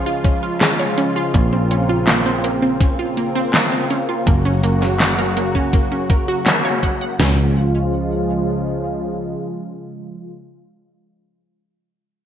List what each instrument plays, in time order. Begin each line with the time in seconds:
Already playing: picked electric bass C#2, analog synth pad C#3 F3 G#3 F4
0.06 synth arpeggio sound F4
0.24 synth arpeggio sound C#4, kick, closed hi-hat
0.43 synth arpeggio sound F4
0.61 synth arpeggio sound G#4, snare, clap, closed hi-hat
0.80 synth arpeggio sound C#5
0.98 synth arpeggio sound C#4, closed hi-hat
1.16 synth arpeggio sound F4
1.34 picked electric bass A#1, analog synth pad A#3 C4, synth arpeggio sound A#3, kick, closed hi-hat
1.53 synth arpeggio sound C4
1.71 synth arpeggio sound C#4, closed hi-hat
1.89 synth arpeggio sound F4
2.07 synth arpeggio sound A#3, snare, clap, closed hi-hat
2.26 synth arpeggio sound C4
2.44 synth arpeggio sound A#3, closed hi-hat
2.62 synth arpeggio sound C4
2.81 synth arpeggio sound C#4, kick, closed hi-hat
2.99 synth arpeggio sound F4
3.17 synth arpeggio sound A#3, closed hi-hat
3.35 synth arpeggio sound C4
3.54 synth arpeggio sound A#3, snare, clap, closed hi-hat
3.72 synth arpeggio sound C4
3.90 synth arpeggio sound C#4, closed hi-hat
4.09 synth arpeggio sound F4
4.27 picked electric bass F#1, analog synth pad C#3 F#3 F#4, synth arpeggio sound A#3, kick, closed hi-hat
4.45 synth arpeggio sound C#4
4.63 synth arpeggio sound A#3, closed hi-hat
4.82 synth arpeggio sound C#4, snare
5.00 synth arpeggio sound F#4, snare, clap, closed hi-hat
5.19 synth arpeggio sound A#4
5.37 synth arpeggio sound A#3, closed hi-hat
5.55 synth arpeggio sound C#4, kick
5.73 synth arpeggio sound A#3, kick, closed hi-hat
5.92 synth arpeggio sound C#4
6.10 synth arpeggio sound A#4, kick, closed hi-hat
6.28 synth arpeggio sound F#4
6.46 synth arpeggio sound F#5, snare, clap, closed hi-hat
6.65 synth arpeggio sound C#5
6.83 synth arpeggio sound F#5, kick, closed hi-hat
7.01 synth arpeggio sound F#5
7.20 picked electric bass C#2, analog synth pad C#3 F3 G#3 F4, synth arpeggio sound C#4, snare, floor tom